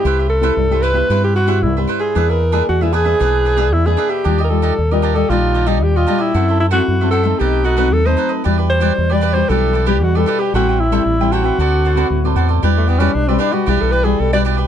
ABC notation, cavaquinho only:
X:1
M:4/4
L:1/16
Q:1/4=114
K:Em
V:1 name="Cavaquinho"
[EBce] [Bce]2 [EBce] z [Bce] [EBce] [Bce] [EBce]2 [EBce] [EBce] z [Bce] [EBce] [Bce] | [D^GBe] [GBe]2 [DGBe] z [GBe] [DGBe] [GBe] [DGBe]2 [DGBe] [DGBe] z [GBe] [DGBe] [GBe] | [DGd_e] [Gde]2 [DGde] z [Gde] [DGde] [Gde] [DGde]2 [DGde] [DGde] z [Gde] [DGde] [Gde] | [FAce] [Ace]2 [FAce] z [Ace] [FAce] [Ace] [^DAB^d]2 [DABd] [DABd] z [ABd] [DABd] [ABd] |
[EGBd] [GBd]2 [EGBd] z [GBd] [EGBd] [GBd] [EGBd]2 [EGBd] [EGBd] z [GBd] [EGBd] [GBd] | [Aceg] [ceg]2 [Aceg] z [ceg] [Aceg] [ceg] [FAcd]2 [FAcd] [FAcd] z [Acd] [FAcd] [Acd] | [EGBd]2 [EGBd] [EGBd] z [GBd] [EGBd] [GBd] [EGBd]2 [EGBd] [GBd]2 [EGBd] [EGBd] [GBd] |]